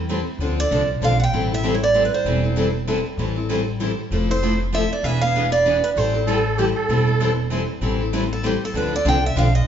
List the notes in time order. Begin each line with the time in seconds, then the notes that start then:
Already playing: E2
0.09 E3 G3 C4 E4 A4
0.38 D2 D3 F3 C4 D4 A4
0.58 C4 D4 A4 D5
0.71 C2 D3 F3 C4 D4 A4
1.01 B1 D3 F3 C4 D4 A4 F5
1.20 F#5 G5
1.32 A1 E3 G3 C4 E4 A4
1.51 C4 E4 A4 E5
1.63 E3 G3 C4 E4 A4
1.75 C#5
1.83 D5
1.94 E3 G3 C4 E4 A4
2.05 B4
2.14 C5
2.25 E1 E3 G3 C4 E4 A4
2.43 C4 E4 A4
2.56 E3 G3 C4 E4 A4
2.87 E3 G3 C4 E4 A4
3.17 A1 E3 G3 C4 E4 A4
3.36 C4 E4 A4
3.49 E3 G3 C4 E4 A4
3.80 E3 G3 C4 E4 A4
4.11 F1 F3 A3 C4 E4 A4
4.29 C4 E4 A4 C5
4.42 F3 A3 C4 E4 A4
4.73 F3 A3 C4 E4 A4 E5
4.93 D5
5.03 E1 E3 B3 D4 G#4 B4 E5
5.21 B3 D4 G#4 F5
5.36 E3 B3 D4 G#4 B4
5.52 D5
5.65 E3 B3 D4 G#4 B4
5.84 B4
5.96 A1 E3 G3 C4 E4 A4 C5
6.14 C4 E4 A4
6.26 E3 G3 C4 E4 A4
6.57 E3 G3 C4 E4 G4 A4
6.75 A4
6.89 E1 E3 G3 C4 E4 A4
7.06 C4 E4 A4
7.21 E3 G3 C4 E4 A4
7.52 E3 G3 C4 E4 A4
7.81 A1 E3 G3 C4 E4 A4
8.00 C4 E4 A4
8.13 E3 G3 C4 E4 A4
8.33 A4
8.43 E3 G3 C4 E4 G4 A4
8.65 A4
8.74 D2 D3 F3 C4 D4 A4 B4
8.92 C4 D4 A4 D5
9.05 C2 D3 F3 C4 D4 A4 G5
9.26 E5
9.36 B1 D3 F3 C4 D4 A4 F5
9.55 D#5